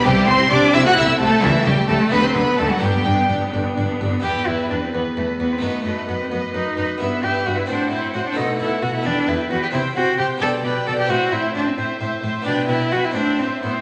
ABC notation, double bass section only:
X:1
M:6/8
L:1/8
Q:3/8=87
K:G
V:1 name="Double bass section" clef=bass
C,, C,, C,, C,, C,, C,, | ^C,, C,, C,, D,, D,, D,, | G,,, G,,, G,,, G,,, G,,, G,,, | [K:Em] z6 |
z6 | z6 | z6 | [K:Ador] z6 |
z6 | z6 |]